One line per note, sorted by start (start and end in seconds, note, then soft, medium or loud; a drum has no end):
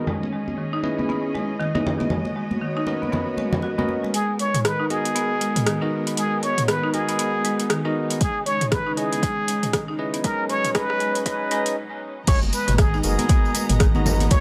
0.07 0.21 G#3 medium
0.07 2.09 C#4 medium
0.07 2.09 G#4 medium
0.07 4.10 D#5 medium
0.07 low conga medium
0.23 muted conga medium
0.33 0.47 G#3 medium
0.48 muted conga soft
0.48 high conga medium
0.58 0.72 D#3 medium
0.73 0.83 D#4 medium
0.83 1.71 C#4 medium
0.83 1.71 E4 medium
0.83 1.71 G#4 medium
0.83 1.71 B4 medium
0.83 1.71 D#5 medium
0.83 muted conga medium
0.99 1.08 B3 medium
0.99 high conga medium
1.09 1.23 B3 medium
1.09 muted conga soft
1.35 1.49 G#3 medium
1.35 muted conga soft
1.60 1.73 D#3 loud
1.60 muted conga soft
1.75 2.10 C#4 medium
1.75 1.84 D#4 loud
1.75 2.10 E4 medium
1.75 2.10 G#4 medium
1.75 2.10 B4 medium
1.75 2.10 D#5 loud
1.75 high conga medium
1.87 low conga loud
2.00 2.10 B3 medium
2.00 muted conga medium
2.00 high conga medium
2.10 2.24 G#3 medium
2.10 4.12 B3 medium
2.10 4.12 F#4 medium
2.10 4.12 C#5 medium
2.10 low conga medium
2.25 muted conga soft
2.36 2.50 G#3 medium
2.51 muted conga soft
2.51 high conga medium
2.61 2.75 D#3 medium
2.77 2.86 D#4 loud
2.87 3.75 C#4 medium
2.87 3.75 F#4 medium
2.87 3.75 A#4 medium
2.87 3.75 B4 medium
2.87 3.75 D#5 medium
2.87 muted conga medium
3.02 3.11 B3 medium
3.02 high conga medium
3.12 3.26 B3 medium
3.12 muted conga soft
3.12 low conga medium
3.37 3.52 G#3 medium
3.37 muted conga medium
3.37 high conga soft
3.53 high conga medium
3.53 low conga loud
3.62 3.71 F#4 medium
3.62 muted conga soft
3.78 3.88 B3 medium
3.78 4.13 C#4 medium
3.78 4.13 F#4 medium
3.78 4.13 A#4 medium
3.78 4.13 B4 medium
3.78 4.13 D#5 medium
3.78 high conga loud
3.89 high conga medium
4.03 4.13 G#3 medium
4.03 muted conga soft
4.14 4.28 G#3 medium
4.14 10.21 G#3 medium
4.14 8.17 B3 medium
4.14 12.24 D#4 medium
4.14 4.38 G#4 medium
4.14 8.17 A#4 medium
4.14 closed hi-hat medium
4.39 4.54 G#3 medium
4.39 4.67 C#5 loud
4.39 closed hi-hat soft
4.54 closed hi-hat soft
4.54 mid tom medium
4.65 4.78 D#3 medium
4.65 4.92 B4 medium
4.65 cross-stick loud
4.65 closed hi-hat medium
4.80 4.89 D#4 loud
4.90 5.78 B3 medium
4.90 5.78 F#4 medium
4.90 5.78 G#4 medium
4.90 5.92 G#4 medium
4.90 5.78 A#4 medium
4.90 5.78 D#5 medium
4.90 closed hi-hat soft
5.05 5.14 B3 medium
5.05 closed hi-hat soft
5.16 5.29 B3 loud
5.16 closed hi-hat medium
5.41 5.55 G#3 medium
5.41 closed hi-hat medium
5.56 closed hi-hat soft
5.56 mid tom medium
5.66 5.80 D#3 medium
5.66 cross-stick loud
5.66 closed hi-hat medium
5.81 6.92 B3 medium
5.81 5.91 D#4 medium
5.81 6.92 F#4 medium
5.81 6.91 G#4 medium
5.81 6.92 A#4 medium
5.81 6.92 D#5 medium
6.07 6.16 B3 medium
6.07 closed hi-hat soft
6.17 6.31 G#3 medium
6.17 6.45 G#4 loud
6.17 closed hi-hat medium
6.43 6.57 G#3 medium
6.43 6.70 C#5 loud
6.43 closed hi-hat soft
6.58 closed hi-hat soft
6.58 mid tom medium
6.68 6.82 D#3 medium
6.68 6.95 B4 loud
6.68 cross-stick loud
6.68 closed hi-hat medium
6.84 6.93 D#4 loud
6.94 7.82 B3 medium
6.94 7.82 F#4 medium
6.94 7.96 G#4 loud
6.94 7.82 G#4 medium
6.94 7.82 A#4 medium
6.94 7.82 D#5 loud
6.94 closed hi-hat soft
7.09 7.18 B3 medium
7.09 closed hi-hat soft
7.19 7.33 B3 loud
7.19 closed hi-hat medium
7.45 7.59 G#3 medium
7.45 closed hi-hat soft
7.60 closed hi-hat soft
7.70 7.84 D#3 loud
7.70 cross-stick loud
7.70 closed hi-hat medium
7.85 8.20 B3 medium
7.85 7.94 D#4 loud
7.85 8.20 F#4 medium
7.85 8.20 G#4 medium
7.85 8.20 A#4 medium
7.85 8.20 D#5 loud
8.10 8.20 B3 medium
8.10 closed hi-hat soft
8.21 10.22 C#3 medium
8.21 8.34 G#3 medium
8.21 8.45 G#4 loud
8.21 kick loud
8.21 closed hi-hat medium
8.46 8.61 G#3 medium
8.46 8.73 C#5 loud
8.46 closed hi-hat soft
8.61 closed hi-hat soft
8.61 mid tom medium
8.71 8.85 D#3 medium
8.71 8.99 B4 loud
8.71 kick loud
8.71 cross-stick loud
8.71 closed hi-hat medium
8.87 8.96 D#4 medium
8.97 9.21 C#4 medium
8.97 9.21 E4 medium
8.97 9.99 G#4 loud
8.97 9.21 G#4 medium
8.97 9.21 B4 medium
8.97 9.21 D#5 medium
8.97 closed hi-hat soft
9.12 9.21 B3 medium
9.12 closed hi-hat soft
9.23 9.36 G#3 medium
9.23 kick loud
9.23 closed hi-hat medium
9.48 9.62 G#3 medium
9.48 closed hi-hat medium
9.63 closed hi-hat soft
9.63 mid tom medium
9.73 9.87 D#3 medium
9.73 kick loud
9.73 cross-stick loud
9.73 closed hi-hat medium
9.88 9.98 D#4 loud
9.99 10.23 C#4 medium
9.99 10.23 E4 medium
9.99 10.23 G#4 medium
9.99 10.23 B4 medium
9.99 10.23 D#5 medium
10.14 10.23 B3 medium
10.14 closed hi-hat soft
10.24 12.26 B2 medium
10.24 12.26 F#3 medium
10.24 10.38 G#3 medium
10.24 10.74 C#4 medium
10.24 12.26 C#4 medium
10.24 10.74 D#4 medium
10.24 10.74 G#4 medium
10.24 10.51 A#4 loud
10.24 10.74 B4 medium
10.24 10.74 D#5 medium
10.24 kick loud
10.24 closed hi-hat medium
10.49 10.64 G#3 medium
10.49 10.77 C#5 loud
10.49 closed hi-hat soft
10.65 closed hi-hat soft
10.65 mid tom medium
10.75 10.89 G#3 medium
10.75 11.24 C#4 medium
10.75 11.24 D#4 medium
10.75 11.24 G#4 medium
10.75 11.24 B4 medium
10.75 11.26 B4 loud
10.75 11.24 D#5 medium
10.75 kick loud
10.75 cross-stick loud
10.75 closed hi-hat medium
10.90 cross-stick medium
11.00 11.15 G#3 medium
11.00 closed hi-hat soft
11.15 closed hi-hat soft
11.26 11.40 G#3 medium
11.26 11.50 C#4 medium
11.26 11.50 D#4 medium
11.26 11.50 G#4 medium
11.26 11.50 B4 medium
11.26 11.73 B4 medium
11.26 11.50 D#5 loud
11.26 kick loud
11.26 closed hi-hat medium
11.51 11.65 G#3 medium
11.51 11.75 C#4 medium
11.51 11.75 D#4 medium
11.51 11.75 G#4 medium
11.51 11.75 B4 medium
11.51 11.75 D#5 medium
11.51 closed hi-hat soft
11.66 closed hi-hat soft
12.27 12.40 G#1 loud
12.27 12.41 G#3 medium
12.27 14.40 G#3 medium
12.27 14.40 B3 medium
12.27 12.39 C#5 loud
12.27 14.40 D#5 medium
12.27 14.40 A#5 medium
12.27 kick loud
12.27 closed hi-hat medium
12.27 crash loud
12.27 tambourine medium
12.27 low conga medium
12.42 12.51 F#1 medium
12.42 tambourine soft
12.42 muted conga medium
12.53 12.68 G#3 medium
12.53 12.80 B4 loud
12.53 closed hi-hat soft
12.53 tambourine loud
12.68 13.01 G#1 loud
12.68 closed hi-hat soft
12.68 mid tom medium
12.68 tambourine soft
12.68 muted conga soft
12.68 high conga medium
12.78 12.92 D#3 medium
12.78 13.03 G#4 medium
12.78 kick loud
12.78 cross-stick loud
12.78 closed hi-hat medium
12.78 tambourine medium
12.94 13.03 D#4 loud
12.94 tambourine soft
13.03 13.17 F#1 medium
13.03 13.92 B3 medium
13.03 13.92 F#4 medium
13.03 14.02 G#4 medium
13.03 13.92 G#4 medium
13.03 13.92 A#4 medium
13.03 13.92 D#5 loud
13.03 closed hi-hat soft
13.03 tambourine medium
13.03 muted conga medium
13.19 13.29 B3 medium
13.19 closed hi-hat soft
13.19 tambourine soft
13.19 high conga medium
13.29 13.43 B3 loud
13.29 kick loud
13.29 closed hi-hat medium
13.29 tambourine soft
13.29 muted conga soft
13.45 tambourine soft
13.55 13.69 G#3 medium
13.55 closed hi-hat medium
13.55 tambourine medium
13.55 muted conga medium
13.69 13.90 G#1 medium
13.69 closed hi-hat soft
13.69 mid tom medium
13.69 tambourine soft
13.80 13.94 D#3 loud
13.80 kick loud
13.80 cross-stick loud
13.80 closed hi-hat medium
13.80 tambourine medium
13.80 muted conga soft
13.95 14.28 G#1 medium
13.95 14.40 B3 medium
13.95 14.05 D#4 loud
13.95 14.40 F#4 medium
13.95 14.40 G#4 medium
13.95 14.40 D#5 loud
13.95 14.40 A#5 medium
13.95 tambourine soft
13.95 high conga loud
14.06 tambourine loud
14.06 low conga loud
14.20 14.30 B3 medium
14.20 closed hi-hat soft
14.20 tambourine soft
14.20 muted conga medium
14.20 high conga loud
14.30 14.40 G#1 loud
14.30 14.40 G#3 medium
14.30 14.40 C#5 loud
14.30 kick loud
14.30 closed hi-hat medium
14.30 tambourine medium
14.30 low conga medium